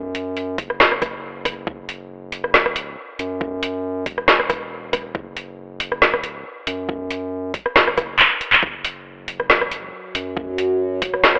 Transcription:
Already playing: sub bass F#2
0.15 closed hi-hat
0.37 closed hi-hat
0.58 sub bass F#1, kick, closed hi-hat
0.70 cross-stick
0.80 snare
0.92 cross-stick
1.02 kick, cross-stick, closed hi-hat
1.45 kick, cross-stick, closed hi-hat
1.67 sub bass F#1, kick
1.89 closed hi-hat
2.32 closed hi-hat
2.44 cross-stick
2.54 snare
2.66 cross-stick
2.76 closed hi-hat
3.19 sub bass F#2, closed hi-hat
3.41 kick
3.63 closed hi-hat
4.06 sub bass E1, kick, closed hi-hat
4.18 cross-stick
4.28 snare
4.40 cross-stick
4.50 kick, cross-stick, closed hi-hat
4.93 kick, cross-stick, closed hi-hat
5.15 sub bass F#1, kick
5.37 closed hi-hat
5.80 closed hi-hat
5.92 cross-stick
6.02 snare
6.14 cross-stick
6.24 closed hi-hat
6.67 sub bass F#2, closed hi-hat
6.89 kick
7.11 closed hi-hat
7.54 kick, closed hi-hat
7.66 cross-stick
7.76 sub bass F#1, snare
7.87 cross-stick
7.97 kick, cross-stick, closed hi-hat
8.19 clap
8.41 closed hi-hat
8.53 clap
8.63 sub bass F#1, synth drone F#3, kick
8.85 closed hi-hat
9.28 closed hi-hat
9.40 cross-stick
9.50 snare
9.61 cross-stick
9.71 closed hi-hat
10.15 sub bass F#2, closed hi-hat
10.37 kick
10.58 closed hi-hat
11.02 sub bass E1, kick, closed hi-hat
11.14 cross-stick
11.24 snare
11.35 cross-stick

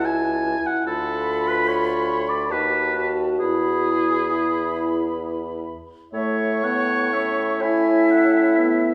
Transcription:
Already playing: bassoon C#2, french horn E4, clarinet F#4, flute A5
0.05 oboe G#5
0.67 oboe F#5
0.86 bassoon D2, french horn F4, clarinet F4, oboe A4, flute B5
1.47 oboe B4
1.68 oboe C#5
2.29 oboe D5
2.50 bassoon D#2, clarinet D#4, french horn F#4, oboe B4, flute A5
2.95 clarinet F#4
3.39 bassoon E2, clarinet E4, oboe G#4, flute B5
4.31 french horn E4
6.13 bassoon A2, french horn A3, clarinet C#5, oboe E5, flute C#6
6.63 french horn B3, oboe F#5
7.13 french horn C#4, oboe E5
7.61 clarinet E4, flute E5, oboe G#5
8.11 french horn C#4, oboe F#5
8.56 french horn B3, oboe E5

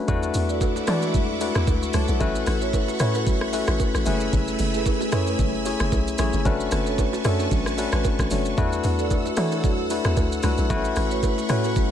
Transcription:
Already playing: tine electric piano A3 C#4 D4 F#4 B4 D5
0.08 log drum bass E2, tine electric piano A3 D4 E4 F#4 B4, string machine A4 E5 F#5 D6, kick, low conga, shaker
0.23 shaker
0.34 log drum bass E2, open hi-hat, shaker
0.49 marimba F#4 A4 D5, shaker
0.61 kick, high bongo, shaker
0.76 low bongo, shaker
0.87 log drum bass E3, tine electric piano G#3 D4 E4 F#4 D5, marimba F#4 A4 D5, cross-stick, open hi-hat, shaker
0.94 tine electric piano A3
1.02 high bongo, shaker
1.14 log drum bass E2, kick, low conga, shaker
1.40 tine electric piano A3 D4 E4 F#4 B4, open hi-hat, low bongo, shaker
1.55 log drum bass E2, cross-stick, shaker
1.67 log drum bass D2, kick, high bongo, shaker
1.82 tine electric piano E5 C#6, shaker
1.93 log drum bass C#2, tine electric piano C#5 A5, cross-stick, open hi-hat, low conga, shaker
2.08 log drum bass B1, tine electric piano A4 F#5, shaker
2.20 log drum bass A1, tine electric piano A3 C#4 E4 F#4 B4, string machine F#5 B5 C#6, kick, low conga, shaker
2.35 shaker
2.46 log drum bass A1, cross-stick, open hi-hat, shaker
2.61 marimba F#4 B4 C#5, shaker
2.73 kick, high bongo, shaker
2.88 low bongo, shaker
2.99 log drum bass A2, tine electric piano A3 C#4 E4 F#4 C#5, marimba F#4 B4 C#5, cross-stick, open hi-hat, shaker
3.15 high bongo, shaker
3.27 log drum bass A1, kick, low conga, shaker
3.41 cross-stick
3.53 tine electric piano A3 C#4 E4 F#4 B4, open hi-hat, low bongo, shaker
3.67 log drum bass A1, cross-stick, shaker
3.80 kick, high bongo, shaker
3.95 log drum bass A1, cross-stick, shaker
4.06 log drum bass F#1, tine electric piano A3 C#4 E4 G#4 B4, string machine A3 G#5 E6, open hi-hat, low conga, shaker
4.20 shaker
4.33 log drum bass F#1, kick, low conga, shaker
4.48 shaker
4.59 log drum bass F#1, open hi-hat, shaker
4.74 marimba E4 G#4 A4 B4, shaker
4.86 kick, high bongo, shaker
5.01 low bongo, shaker
5.12 log drum bass F#2, tine electric piano A3 C#4 E4 G#4 C#5, marimba E4 G#4 A4 B4, cross-stick, open hi-hat, shaker
5.27 high bongo, shaker
5.39 log drum bass F#1, kick, low conga, shaker
5.65 tine electric piano A3 C#4 E4 G#4 C#5, open hi-hat, low bongo, shaker
5.80 log drum bass F#1, cross-stick, shaker
5.92 log drum bass B1, kick, high bongo, shaker
6.08 shaker
6.18 log drum bass A1, tine electric piano A3 C#4 E4 G#4 C#5, cross-stick, open hi-hat, low conga, shaker
6.33 log drum bass F#1, shaker
6.45 log drum bass F#1, tine electric piano A3 C#4 D4 F#4 B4, string machine B4 A5 C#6, kick, low conga, shaker
6.60 shaker
6.71 log drum bass F#1, cross-stick, open hi-hat, shaker
6.86 marimba D4 A4 C#5, shaker
6.98 kick, high bongo, shaker
7.13 low bongo, shaker
7.24 log drum bass F#2, tine electric piano A3 C#4 D4 F#4 A4, marimba D4 A4 C#5, cross-stick, open hi-hat, shaker
7.39 high bongo, shaker
7.51 log drum bass A1, kick, low conga, shaker
7.66 cross-stick, shaker
7.77 tine electric piano A3 C#4 D4 F#4 B4, open hi-hat, low bongo, shaker
7.92 log drum bass A1, cross-stick, shaker
8.04 kick, high bongo, shaker
8.19 log drum bass A1, kick, cross-stick, shaker
8.31 log drum bass F#1, tine electric piano A3 C#4 D4 F#4 C#5, open hi-hat, low conga, shaker
8.45 shaker
8.57 log drum bass E2, tine electric piano A3 D4 E4 F#4 B4, string machine A4 F#5 E6, kick, low conga, shaker
8.72 shaker
8.84 log drum bass E2, open hi-hat, shaker
8.99 marimba F#4 A4 D5, shaker
9.11 kick, high bongo, shaker
9.26 low bongo, shaker
9.37 log drum bass E3, tine electric piano A3 D4 E4 F#4 C#5, marimba F#4 A4 D5, cross-stick, open hi-hat, shaker
9.52 high bongo, shaker
9.64 log drum bass E2, kick, low conga, shaker
9.90 tine electric piano A3 D4 E4 F#4 B4, open hi-hat, low bongo, shaker
10.04 log drum bass E2, cross-stick, shaker
10.17 log drum bass D2, kick, high bongo, shaker
10.32 shaker
10.43 log drum bass C#2, tine electric piano A3 D4 E4 F#4 B4, cross-stick, open hi-hat, low conga, shaker
10.57 log drum bass B1, shaker
10.69 log drum bass A1, tine electric piano A3 B3 E4 F#4 B4, string machine A3 B5 C#6, kick, low conga, shaker
10.76 tine electric piano C#4
10.85 shaker
10.96 log drum bass A1, cross-stick, open hi-hat, shaker
11.11 marimba F#4 B4 C#5, shaker
11.23 kick, high bongo, shaker
11.38 low bongo, shaker
11.49 log drum bass A2, tine electric piano A3 C#4 E4 F#4 B4, marimba F#4 B4 C#5, cross-stick, open hi-hat, shaker
11.64 high bongo, shaker
11.76 log drum bass A1, kick, low conga, shaker

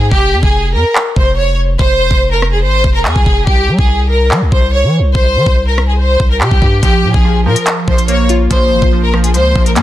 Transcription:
Already playing: 808-style bass G#2
0.11 808-style bass F1, violin section G4, kick
0.32 808-style bass F2
0.43 808-style bass F1, violin section G#4, kick
0.74 808-style bass F2, violin section A#4
0.95 clap
1.16 808-style bass F1, violin section C5, kick
1.37 violin section C#5
1.79 808-style bass F1, violin section C5, kick
2.00 808-style bass E1
2.11 808-style bass F1, kick
2.32 violin section A#4
2.42 cross-stick
2.53 violin section G#4
2.63 808-style bass G#1, violin section C5
2.84 808-style bass F1, kick
2.95 violin section A#4
3.05 808-style bass F2, violin section G#4, clap
3.16 808-style bass C2, kick
3.26 808-style bass F1, kick
3.47 808-style bass C2, violin section G4, kick
3.68 808-style bass G3
3.79 808-style bass C2, violin section G#4, kick
4.10 violin section A#4
4.31 808-style bass G3, clap
4.42 808-style bass C2
4.52 808-style bass C2, violin section C5, kick
4.73 violin section C#5
4.84 808-style bass E3
4.99 808-style bass C2
5.15 808-style bass C2, violin section C5, kick
5.36 808-style bass E3
5.46 808-style bass C2, kick
5.67 violin section A#4
5.78 cross-stick
5.88 violin section G#4
5.99 violin section C5
6.20 808-style bass C2, kick
6.30 violin section A#4
6.41 808-style bass C3, violin section G4, clap
6.51 808-style bass C2, kick
6.62 808-style bass G2, kick
6.83 808-style bass A#1, synth keys F3, violin section G4, kick, closed hi-hat
7.04 808-style bass A#2
7.14 808-style bass A#1, violin section G#4, kick
7.25 synth keys F3
7.46 808-style bass A#2, synth keys F3, violin section A#4
7.56 closed hi-hat
7.66 synth keys F3, clap, closed hi-hat
7.88 808-style bass A#1, synth keys F3, violin section C5, kick
7.98 closed hi-hat
8.08 synth keys A#3, violin section C#5, closed hi-hat
8.29 synth keys F4, closed hi-hat
8.51 808-style bass A#1, synth keys F3, violin section C5, kick, closed hi-hat
8.72 808-style bass G#1
8.82 808-style bass A#1, kick
8.93 synth keys F3
9.03 violin section A#4
9.14 synth keys F3, cross-stick
9.24 violin section G#4, closed hi-hat
9.34 808-style bass C#2, synth keys F3, violin section C5, closed hi-hat
9.55 808-style bass A#1, synth keys F3, kick
9.66 violin section A#4, closed hi-hat
9.76 808-style bass A#2, synth keys A#3, violin section G#4, clap, closed hi-hat

